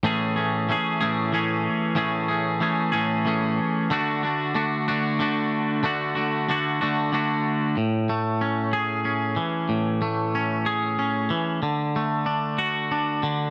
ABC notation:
X:1
M:6/8
L:1/8
Q:3/8=62
K:A
V:1 name="Clean electric guitar"
[A,,E,A,CG] [A,CG] [E,A,CG] [A,,E,A,CG] [E,A,CG]2 | [A,,E,A,CG] [A,CG] [E,A,CG] [A,,E,A,CG] [E,A,CG]2 | [D,A,DF] [A,DF] [D,A,DF] [D,A,DF] [D,A,DF]2 | [D,A,DF] [A,DF] [D,A,DF] [D,A,DF] [D,A,DF]2 |
A,, A, C G C E, | A,, A, C G C E, | D, A, D F D D, |]